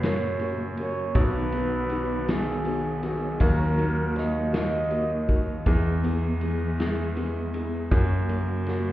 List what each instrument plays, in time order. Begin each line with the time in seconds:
Already playing: grand piano F#2, string section A#2 C#3 F#3, steel-string acoustic guitar F#3 F#4
0.03 felt piano A#3 C#4 F#4, steel-string acoustic guitar C#4, flugelhorn C#5, snare, ride
0.39 felt piano A#3 C#4 F#4, steel-string acoustic guitar A#3, ride
0.77 felt piano A#3 C#4 F#4, steel-string acoustic guitar C#4, flugelhorn C#5, ride
1.14 grand piano B1, string section D#3 B3, steel-string acoustic guitar B3 F#4, felt piano B3 D#4 F#4, kick, ride
1.18 flugelhorn B4
1.52 steel-string acoustic guitar B3, felt piano B3 D#4 F#4, ride
1.90 felt piano B3 D#4 F#4, steel-string acoustic guitar F#4, ride
2.27 felt piano B3 D#4 F#4, steel-string acoustic guitar D#4, flugelhorn G#4, snare, ride
2.65 steel-string acoustic guitar B3, felt piano B3 D#4 F#4, ride
3.03 felt piano B3 D#4 F#4, steel-string acoustic guitar D#4, flugelhorn G#4, ride
3.39 grand piano D#2, steel-string acoustic guitar F#3 F#4, felt piano A#3 D#4 F#4, string section A#3, flugelhorn A#4, kick, ride
3.76 felt piano A#3 D#4 F#4, steel-string acoustic guitar A#3, ride
4.14 felt piano A#3 D#4 F#4, steel-string acoustic guitar F#4, snare, ride
4.18 flugelhorn D#5
4.52 felt piano A#3 D#4 F#4, steel-string acoustic guitar D#4, flugelhorn D#5, snare, ride
4.90 felt piano A#3 D#4 F#4, steel-string acoustic guitar A#3, ride
5.27 felt piano A#3 D#4 F#4, steel-string acoustic guitar D#4, kick, ride
5.66 grand piano E2, steel-string acoustic guitar E3 G#4, string section E3 G#3 B3, felt piano B3 E4 G#4, kick, ride
6.04 felt piano B3 E4 G#4, steel-string acoustic guitar B3, ride
6.41 felt piano B3 E4 G#4, steel-string acoustic guitar G#4, ride
6.78 felt piano B3 E4 G#4, steel-string acoustic guitar E4, snare, ride
7.16 steel-string acoustic guitar B3, felt piano B3 E4 G#4, ride
7.53 felt piano B3 E4 G#4, steel-string acoustic guitar E4, ride
7.91 grand piano F#2, string section C#3 F#3 A#3, steel-string acoustic guitar F#3 F#4, felt piano A#3 C#4 F#4, kick, ride
8.28 felt piano A#3 C#4 F#4, steel-string acoustic guitar A#3, ride
8.66 felt piano A#3 C#4 F#4, steel-string acoustic guitar F#4, snare, ride